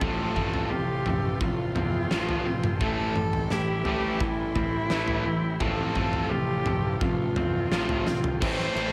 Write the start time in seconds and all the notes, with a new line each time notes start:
Already playing: C4 C6
0.00 A1 F2 A2 C3 F3 A3 A4 C5 F5, kick, floor tom
0.35 F2 A2 C3 F3 A3, kick, mid tom
0.54 floor tom
0.70 A1 F2 A2 C3 F3 F4 G4
1.06 A1 F2 A2 C3 F3 A3, floor tom, mid tom
1.40 A1 F2 A2 C3 F3 F4, kick
1.75 E2 F2 A2 C3 F3 C4, floor tom, mid tom
2.10 A1 F2 A2 C3 F3 A3 F4, snare
2.29 floor tom
2.45 A1 F2 A2 C3 F3 C4
2.64 mid tom
2.78 A1 A2 E3 A3 A4 E5 G5, kick, floor tom
3.15 A1 A2 E3 G3, mid tom
3.33 floor tom
3.50 A1 A2 E3 E4 G4, snare
3.84 A1 A2 E3 G3 A3, floor tom
4.20 A1 A2 E3 E4, kick
4.55 A1 A2 E3 C4, kick, floor tom
4.90 A1 A2 E3 A3 E4, snare
5.08 floor tom
5.26 A1 A2 E3 C4
5.60 A1 F2 A2 C3 F3 A3 A4 C5 F5, kick, floor tom
5.95 F2 A2 C3 F3 A3, kick, mid tom
6.13 floor tom
6.30 A1 F2 A2 C3 F3 F4 G4
6.65 A1 F2 A2 C3 F3 A3, floor tom, mid tom
7.01 A1 F2 A2 C3 F3 F4, kick
7.35 E2 F2 A2 C3 F3 C4, floor tom, mid tom
7.71 A1 F2 A2 C3 F3 A3 F4, snare
7.89 floor tom
8.06 A1 F2 A2 C3 F3 C4, snare
8.24 floor tom
8.40 A1 A2 E3 A3 C4 E4 A4 C5 E5 G5 A5, kick, crash
8.59 snare
8.75 A1 A2 E3 A3 C4 E4, crash